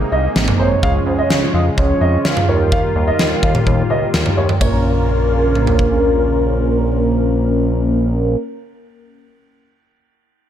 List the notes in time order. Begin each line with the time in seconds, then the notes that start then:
Already playing: C3 G#3 A#3 C4 D#4 G#4
0.12 C2 D#5
0.36 G#1, snare
0.48 mid tom
0.59 G#1 C5 C#5
0.83 C#2 C#3 F3 C#4 F4 G#4 F5, kick
1.07 C#2 C5
1.18 C#5 D#5
1.30 C#2 C#5, snare
1.54 F2 D#5 F5
1.77 C#2 C#5, kick
2.01 F2 D#5
2.25 C#2 C#5 F5, snare
2.37 mid tom
2.48 D#2 D#3 G3 A#3 D#4 F4 G4 A#4 C#5
2.72 F5, kick
2.96 D#2
3.08 D#5
3.19 D#2, snare
3.43 D#2 F5, kick
3.55 mid tom
3.67 D#2, kick
3.90 C#2 D#5
4.14 D#2, snare
4.26 mid tom
4.37 D#2 C#5
4.49 mid tom
4.61 A#1 C#3 A#3 C#4 F4 A#4 C#5, kick, ride
5.55 mid tom
5.67 floor tom
5.79 kick